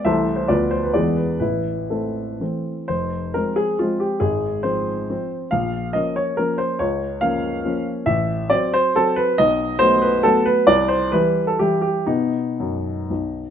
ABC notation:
X:1
M:3/4
L:1/16
Q:1/4=134
K:Am
V:1 name="Grand piano"
[Ace]3 c [FBd]2 c B [^GBd]2 B2 | [EB]4 [CEA]4 z4 | [K:Fm] c4 B2 A2 F2 G2 | A4 c6 z2 |
f4 e2 d2 B2 c2 | d4 f6 z2 | [K:Bphr] e4 d2 c2 A2 B2 | ^d4 c2 B2 A2 B2 |
d2 c2 B3 A G2 G2 | ^D8- D2 z2 |]
V:2 name="Grand piano" clef=bass
[C,,E,A,C]4 [D,,F,B,]4 [E,,E,^G,B,]4 | A,,,4 A,4 [E,A,C]4 | [K:Fm] F,,,4 [F,A,C]4 [F,A,C]4 | A,,,4 [F,C]4 [F,C]4 |
B,,,4 [F,B,D]4 [F,B,D]4 | D,,4 [F,B,D]4 [F,B,D]4 | [K:Bphr] A,,,4 [F,C]4 [F,C]4 | B,,,4 [F,A,B,]4 [F,A,B,]4 |
C,,4 [E,G,E]4 [E,G,E]4 | [B,,B,]4 F,,4 B,,,4 |]